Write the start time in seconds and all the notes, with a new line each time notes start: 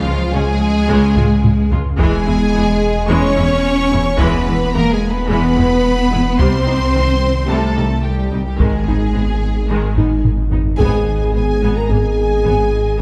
Already playing: C#2 F3 F4 F5
0.06 C#2 G#3 F4
0.33 C#2 F3 G#3 C#4 G#4 G#5
0.89 C#2 C#3 G#3
1.16 C#2 G#3 F4, taiko low-mid
1.44 taiko low-mid
1.71 C#2 G#3 F4, taiko low
1.99 E1 E2 E3 G#3 G#4 G#5, taiko
2.27 E2 G#3 B3 E4
2.54 E2 E3 G#3 B3
3.08 E2 E3 G#3 C#4 C#5 C#6
3.37 E2 G#3 B3 E4
3.92 E2 G#3 B3 E4
4.19 E2 E3 G#3 B3 B4 B5, taiko
4.47 E2 G#3 B3 E4
4.73 E2 E3 G#3 A#3 B3 A#4 A#5
4.92 G#3 G#4 G#5
5.10 B3 B4 B5
5.28 E2 E3 G#3 B3 B4 B5
5.56 E2 G#3 B3 E4
6.11 E2 G#3 B3 E4
6.38 C2 C3 G3 C4 C5 C6, taiko
6.66 C2 G3 D#4
6.95 C2 D#3 C4
7.49 C2 C3 G3 A3 A4 A5
7.77 C2 G3 D#4
8.04 G3 G4 G5
8.32 C2 G3 D#4
8.46 G3 G4 G5
8.59 G#1 D#3 G#3 G#4 G#5, taiko
8.87 G#1 B3 D#4
9.14 G#1 G#3 B3
9.70 G#1 D#3 G#3
9.97 G#1 B3 D#4, taiko low-mid
10.25 taiko low-mid
10.52 G#1 B3 D#4, taiko low
10.77 G#1 G#2 G#3 B3 G#4 D#5 G#5, taiko
11.33 G#1 G#2 B3 G#4 G#5
11.62 G#1 G#2 G#3 B3
11.76 A#4 A#5
11.89 G#1 G#2 A#3 B3 G#4 G#5
12.45 G#1 G#2 G#3 B3